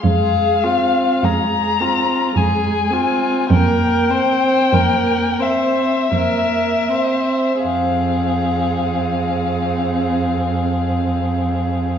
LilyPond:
<<
  \new Staff \with { instrumentName = "Violin" } { \time 3/4 \key f \minor \tempo 4 = 43 f''4 bes''4 aes''4 | g''4. e''4. | f''2. | }
  \new Staff \with { instrumentName = "Violin" } { \time 3/4 \key f \minor aes'8 f'8 aes'8 f'8 aes'8 f'8 | bes'8 c''8 bes'8 c''8 bes'8 c''8 | aes'2. | }
  \new Staff \with { instrumentName = "Viola" } { \time 3/4 \key f \minor aes8 c'8 aes8 c'8 aes8 c'8 | bes8 c'8 bes8 c'8 bes8 c'8 | c'2. | }
  \new Staff \with { instrumentName = "Cello" } { \clef bass \time 3/4 \key f \minor f,4 f,4 f,4 | f,4 f,4 f,4 | f,2. | }
>>